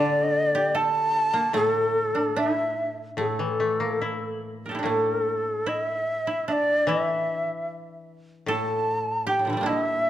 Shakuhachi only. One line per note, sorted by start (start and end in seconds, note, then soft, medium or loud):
0.00 0.78 D5 medium
0.76 1.55 A5 medium
1.56 2.39 A4 medium
2.37 2.91 E5 medium
3.19 4.40 A4 medium
4.87 5.69 A4 medium
5.68 5.80 D#5 medium
5.80 6.47 E5 medium
6.48 6.53 E5 medium
6.52 6.89 D5 medium
6.87 7.69 E5 medium
8.50 9.24 A5 medium
9.27 9.70 G5 medium
9.68 10.10 E5 medium